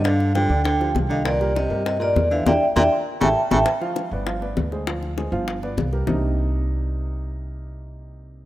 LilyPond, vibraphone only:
\new Staff \with { instrumentName = "Vibraphone" } { \time 4/4 \key c \minor \tempo 4 = 199 f''4 g''4 g''4 r8 f''8 | d''4 ees''4 ees''8 d''4 f''8 | <d'' e'' g''>8 r8 <d'' e'' g''>8 r4 <e'' g'' a''>8 r8 <e'' g'' a''>8 | r1 |
r1 | r1 | r1 | }